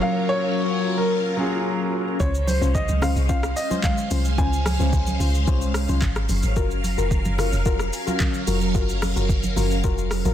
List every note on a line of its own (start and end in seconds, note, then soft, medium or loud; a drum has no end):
0.00 1.37 F#3 medium
0.00 2.16 F#3 medium
0.00 1.38 A#3 medium
0.00 0.02 C#4 medium
0.00 2.16 C#4 medium
0.00 0.90 C#4 medium
0.00 0.03 F4 medium
0.00 2.18 F4 medium
0.00 0.90 F4 medium
0.00 2.22 A4 medium
0.00 0.04 A#4 medium
0.00 2.16 A#4 medium
0.00 0.90 A#4 medium
0.00 0.30 F5 loud
0.29 1.00 C#5 loud
0.98 1.89 A#4 medium
1.37 2.03 F#3 medium
1.37 2.04 A#3 medium
1.37 2.04 C#4 medium
1.37 2.05 F4 medium
1.37 2.05 G#4 medium
2.20 2.60 C#2 loud
2.20 6.25 G#3 medium
2.20 2.30 C#4 medium
2.20 6.25 C#4 medium
2.20 2.30 F4 medium
2.20 6.25 C5 medium
2.20 2.30 C5 loud
2.20 2.45 C#5 medium
2.20 10.34 F5 loud
2.20 kick loud
2.20 low conga medium
2.20 shaker medium
2.35 shaker medium
2.47 2.73 C5 medium
2.47 open hi-hat soft
2.47 high conga medium
2.47 shaker medium
2.61 2.88 C2 loud
2.61 2.70 C#4 medium
2.61 2.70 F4 medium
2.61 2.70 C5 medium
2.61 shaker medium
2.75 3.03 D#5 medium
2.75 kick medium
2.75 low conga medium
2.75 shaker medium
2.88 3.15 C#2 medium
2.88 high conga medium
2.88 shaker medium
3.02 3.11 C#4 medium
3.02 3.11 F4 medium
3.02 3.12 C5 medium
3.02 3.08 F5 loud
3.02 cross-stick loud
3.02 open hi-hat medium
3.02 high conga medium
3.02 low conga medium
3.02 shaker medium
3.16 3.55 C2 medium
3.16 shaker medium
3.29 3.39 C#4 loud
3.29 3.39 F4 medium
3.29 3.39 C5 loud
3.29 3.55 F5 medium
3.29 kick loud
3.29 shaker medium
3.43 cross-stick loud
3.43 shaker medium
3.56 3.85 D#5 medium
3.56 open hi-hat medium
3.56 shaker loud
3.70 3.79 C#4 medium
3.70 3.79 F4 medium
3.70 3.80 C5 medium
3.70 high conga medium
3.70 shaker soft
3.84 4.40 F5 loud
3.84 kick medium
3.84 clap medium
3.84 high conga medium
3.84 low conga medium
3.84 shaker medium
3.98 shaker medium
4.11 4.37 C2 medium
4.11 4.20 C#4 medium
4.11 4.21 F4 medium
4.11 4.21 C5 medium
4.11 open hi-hat medium
4.11 high conga medium
4.11 shaker loud
4.25 shaker medium
4.38 4.78 C#2 loud
4.38 4.48 C#4 medium
4.38 4.48 F4 medium
4.38 4.48 C5 loud
4.38 5.98 G#5 loud
4.38 kick loud
4.38 low conga medium
4.38 shaker medium
4.53 shaker medium
4.66 cross-stick loud
4.66 open hi-hat soft
4.66 high conga medium
4.66 shaker medium
4.79 5.18 C#2 loud
4.79 4.88 C#4 medium
4.79 4.89 F4 medium
4.79 4.89 C5 medium
4.79 shaker medium
4.93 kick medium
4.93 low conga medium
4.93 shaker medium
5.07 high conga medium
5.07 shaker medium
5.20 5.46 C#2 loud
5.20 5.29 C#4 medium
5.20 5.30 F4 medium
5.20 5.30 C5 medium
5.20 open hi-hat medium
5.20 high conga medium
5.20 low conga medium
5.20 shaker loud
5.34 shaker medium
5.47 5.87 C2 loud
5.47 5.85 C#4 loud
5.47 5.85 F4 medium
5.47 5.86 C5 loud
5.47 kick loud
5.47 shaker medium
5.62 shaker medium
5.74 cross-stick loud
5.74 open hi-hat medium
5.74 shaker medium
5.89 6.01 C2 loud
5.89 5.98 C#4 medium
5.89 5.98 F4 medium
5.89 5.98 C5 medium
5.89 high conga medium
5.89 shaker soft
6.02 6.28 G#1 loud
6.02 kick loud
6.02 clap medium
6.02 high conga medium
6.02 low conga medium
6.02 shaker medium
6.16 cross-stick medium
6.16 shaker medium
6.29 6.43 F#1 loud
6.29 10.34 F#3 medium
6.29 10.34 C#4 medium
6.29 10.34 A#4 loud
6.29 open hi-hat medium
6.29 high conga medium
6.29 shaker loud
6.43 6.58 G#1 medium
6.43 shaker medium
6.56 6.96 F#1 loud
6.56 6.66 F4 medium
6.56 6.66 F#4 medium
6.56 6.66 A#4 loud
6.56 kick loud
6.56 low conga medium
6.56 shaker medium
6.71 shaker medium
6.84 open hi-hat soft
6.84 high conga medium
6.84 shaker medium
6.98 7.24 F1 medium
6.98 7.07 F4 medium
6.98 7.07 F#4 medium
6.98 7.07 A#4 medium
6.98 shaker medium
7.11 kick medium
7.11 low conga medium
7.11 shaker medium
7.25 7.51 F#1 loud
7.25 high conga medium
7.25 shaker medium
7.38 7.48 F4 medium
7.38 7.48 F#4 medium
7.38 7.48 A#4 medium
7.38 cross-stick medium
7.38 open hi-hat medium
7.38 high conga medium
7.38 low conga medium
7.38 shaker medium
7.53 7.91 F1 medium
7.53 shaker medium
7.65 7.75 F4 medium
7.65 7.75 F#4 medium
7.65 7.75 A#4 loud
7.65 kick loud
7.65 shaker medium
7.79 cross-stick medium
7.79 shaker medium
7.93 open hi-hat medium
7.93 shaker loud
8.07 8.16 F4 medium
8.07 8.16 F#4 medium
8.07 8.16 A#4 medium
8.07 high conga medium
8.07 shaker medium
8.20 kick loud
8.20 clap medium
8.20 high conga medium
8.20 low conga medium
8.20 shaker medium
8.34 shaker medium
8.47 8.74 F1 medium
8.47 8.57 F4 medium
8.47 8.57 F#4 medium
8.47 8.57 A#4 medium
8.47 open hi-hat medium
8.47 high conga medium
8.47 shaker loud
8.61 shaker medium
8.75 9.14 F#1 loud
8.75 8.84 F4 medium
8.75 8.84 F#4 medium
8.75 8.84 A#4 loud
8.75 kick loud
8.75 low conga medium
8.75 shaker medium
8.89 shaker medium
9.02 cross-stick loud
9.02 open hi-hat soft
9.02 high conga medium
9.02 shaker medium
9.16 9.55 F#1 loud
9.16 9.25 F4 medium
9.16 9.25 F#4 medium
9.16 9.25 A#4 medium
9.16 shaker medium
9.29 kick medium
9.29 low conga medium
9.29 shaker medium
9.43 high conga medium
9.43 shaker medium
9.56 9.83 F#1 loud
9.56 9.66 F4 medium
9.56 9.66 F#4 medium
9.56 9.66 A#4 medium
9.56 open hi-hat medium
9.56 high conga medium
9.56 low conga medium
9.56 shaker loud
9.71 shaker medium
9.84 10.24 F1 loud
9.84 10.22 F4 loud
9.84 10.22 F#4 medium
9.84 10.22 A#4 loud
9.84 kick loud
9.84 shaker medium
9.98 shaker medium
10.11 cross-stick medium
10.11 open hi-hat medium
10.11 shaker medium
10.25 10.34 G#1 loud
10.25 10.34 F4 medium
10.25 10.34 F#4 medium
10.25 10.34 A#4 medium
10.25 high conga medium
10.25 shaker soft